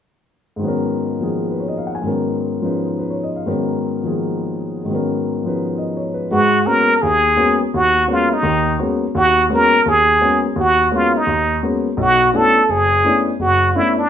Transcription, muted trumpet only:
6.32 6.68 F#4 medium
6.67 7.03 A#4 medium
7.02 7.60 G#4 medium
7.76 8.14 F#4 medium
8.12 8.35 F4 medium
8.33 8.81 D#4 medium
9.17 9.49 F#4 medium
9.54 9.90 A#4 medium
9.88 10.45 G#4 medium
10.60 10.97 F#4 medium
10.95 11.19 F4 medium
11.17 11.65 D#4 medium
12.02 12.38 F#4 medium
12.36 12.72 A4 medium
12.70 13.28 G#4 medium
13.41 13.78 F#4 medium
13.76 13.98 E4 medium
13.99 14.10 D4 medium

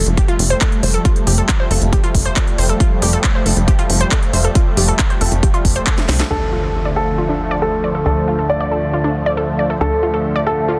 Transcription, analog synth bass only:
0.06 0.21 F1 medium
0.39 0.54 F1 medium
0.83 0.98 F1 medium
1.27 1.42 F1 loud
1.71 1.78 F1 loud
1.82 1.96 F1 medium
2.15 2.29 F1 medium
2.58 2.73 F1 medium
3.02 3.17 F1 loud
3.46 3.53 F1 loud
3.57 3.71 F1 medium
3.90 4.04 F1 medium
4.33 4.48 F1 medium
4.77 4.92 F1 loud
5.21 5.28 F1 loud
5.32 5.47 F1 medium
5.65 5.80 F1 loud
6.09 6.23 C2 medium
6.31 8.04 D2 medium
8.06 9.79 D2 medium
9.81 10.79 D2 medium

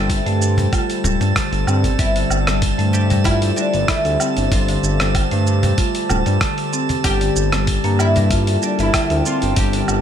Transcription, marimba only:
0.00 0.25 G3 medium
0.26 0.40 A3 loud
0.58 0.72 G3 medium
0.73 0.82 F4 medium
1.04 1.20 G3 medium
1.36 1.45 D3 medium
1.67 1.83 C4 medium
1.99 2.09 G3 medium
2.16 2.46 D3 medium
2.47 2.77 G3 medium
2.78 2.93 A3 loud
3.10 3.25 G3 medium
3.25 3.35 F4 medium
3.57 3.73 G3 medium
3.88 3.98 D3 medium
4.20 4.36 C4 medium
4.52 4.61 G3 medium
4.69 4.98 D3 medium
5.00 5.30 G3 medium
5.32 5.46 A3 loud
5.63 5.77 G3 medium
5.78 5.88 F4 medium
6.09 6.25 G3 medium
6.41 6.51 D3 medium
6.73 6.89 C4 medium
7.04 7.14 G3 medium
7.21 7.51 D3 medium
7.53 7.83 G3 medium
7.85 7.99 A#3 loud
8.16 8.30 G3 medium
8.31 8.40 F4 medium
8.62 8.78 G3 medium
8.94 9.03 D3 medium
9.25 9.41 C4 medium
9.57 9.67 G3 medium
9.74 10.01 D3 medium

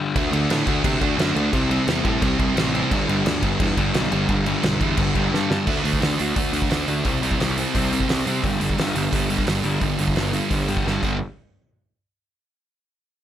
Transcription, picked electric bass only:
0.16 0.28 D2 loud
0.32 0.45 D2 loud
0.50 0.62 A2 medium
0.67 0.80 D2 loud
0.84 0.97 C3 medium
1.02 1.14 D2 medium
1.18 1.31 F#2 medium
1.35 1.48 D2 loud
1.53 1.78 C2 loud
1.87 2.00 E2 loud
2.05 2.17 A2 loud
2.22 2.35 C2 medium
2.39 2.52 C2 loud
2.57 2.81 A1 loud
2.92 3.04 G1 loud
3.09 3.21 G1 medium
3.26 3.38 D2 loud
3.42 3.55 G1 loud
3.60 3.72 E2 medium
3.77 3.90 G1 loud
3.94 4.07 B1 medium
4.11 4.24 G1 loud
4.29 4.54 G1 loud
4.64 4.76 B1 medium
4.81 4.93 E2 loud
4.98 5.10 G1 loud
5.15 5.28 G1 medium
5.32 5.57 G2 medium
5.67 5.79 D2 loud
5.84 5.96 D2 medium
6.02 6.14 D2 loud
6.20 6.32 D2 loud
6.37 6.60 D2 medium
6.71 6.82 D2 loud
6.88 7.00 D2 loud
7.05 7.17 C2 loud
7.22 7.34 C2 medium
7.40 7.63 C2 medium
7.75 7.98 C2 medium
8.09 8.21 C2 medium
8.26 8.38 C3 medium
8.44 8.55 G1 loud
8.62 8.73 G1 medium
8.79 8.90 G1 medium
8.95 9.07 G1 medium
9.13 9.36 G1 medium
9.47 9.59 G1 medium
9.64 9.76 G1 loud
9.82 9.93 G1 loud
9.99 10.11 G1 medium
10.16 10.39 G1 medium
10.51 10.75 G1 medium
10.86 10.97 G1 medium
11.03 11.19 G1 medium

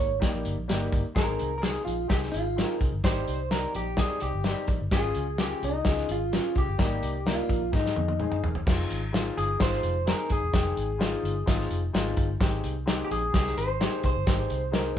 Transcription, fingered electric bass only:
0.00 0.17 G#1 medium
0.34 0.43 A#1 medium
0.46 0.55 G1 medium
0.58 0.67 A#1 medium
0.70 0.88 G1 medium
0.93 1.02 G1 medium
1.16 1.35 G#1 medium
1.40 1.77 C2 medium
1.86 2.05 A#1 medium
2.10 2.29 C2 loud
2.34 2.62 G#1 medium
2.81 2.90 C2 medium
2.92 3.02 G1 medium
3.28 3.65 C2 medium
3.75 4.03 A#1 medium
4.22 4.31 C2 medium
4.34 4.52 G1 medium
4.68 4.78 A#1 medium
4.81 4.90 G1 medium
5.15 5.53 C#2 medium
5.63 5.81 C2 medium
5.86 6.04 C#2 medium
6.09 6.37 G#1 medium
6.56 6.65 C2 medium
6.67 6.77 G1 medium
6.79 6.98 G#1 medium
7.02 7.40 C2 medium
7.50 7.75 A#1 medium
7.73 7.92 G#2 medium
7.97 8.25 F2 medium
8.32 8.41 G2 medium
8.44 8.62 E1 medium
8.67 8.86 F1 medium
8.91 9.28 G#1 medium
9.38 9.56 G1 medium
9.60 9.79 G#1 medium
9.83 10.11 F1 medium
10.31 10.40 G#1 medium
10.42 10.51 E1 medium
10.54 10.72 F1 medium
10.77 11.14 G#1 medium
11.23 11.42 G1 medium
11.47 11.66 G#1 medium
11.71 11.89 F1 medium
11.94 12.12 G#1 loud
12.17 12.36 G1 medium
12.41 12.59 G#1 loud
12.64 13.01 C2 medium
13.11 13.29 A#1 medium
13.34 13.53 C2 medium
13.57 13.85 G#1 medium
14.04 14.14 C2 medium
14.15 14.25 G1 medium
14.27 14.46 G#1 loud
14.51 14.97 C2 medium

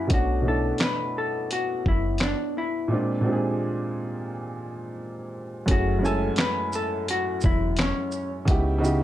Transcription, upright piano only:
0.00 0.12 F#2 medium
0.00 0.12 A#3 medium
0.00 0.10 C#4 medium
0.00 0.12 E4 medium
0.00 0.12 G#4 medium
0.07 0.37 B2 medium
0.07 0.37 A3 medium
0.07 0.38 C#4 medium
0.11 0.39 D4 medium
0.11 0.39 F#4 medium
0.42 1.49 B2 medium
0.42 1.50 A3 medium
0.42 1.50 C#4 medium
0.46 1.51 D4 medium
0.46 1.52 E4 medium
2.88 3.16 A#2 medium
2.88 3.17 G#3 medium
2.88 3.18 C4 medium
2.92 3.19 D4 medium
2.92 3.19 F4 medium
3.21 4.28 A#2 medium
3.21 4.29 G#3 medium
3.21 4.29 C4 medium
3.25 4.30 D4 medium
3.25 3.33 G4 medium
3.32 4.34 G#4 medium
5.66 5.95 F#2 medium
5.66 5.96 A3 medium
5.66 5.97 C#4 medium
5.71 5.97 E4 medium
5.71 5.98 G#4 medium
5.99 7.07 F#2 medium
5.99 6.10 G#3 medium
5.99 7.08 C#4 medium
5.99 7.09 E4 medium
6.05 7.11 A3 medium
6.05 7.10 G#5 medium
8.45 8.74 C#3 medium
8.45 8.75 B3 medium
8.45 8.76 D#4 medium
8.49 8.76 E4 medium
8.49 8.77 G4 loud
8.79 9.03 C#3 medium
8.79 9.03 B3 medium
8.79 9.03 D#4 medium
8.83 9.03 E4 medium
8.83 9.03 G4 medium

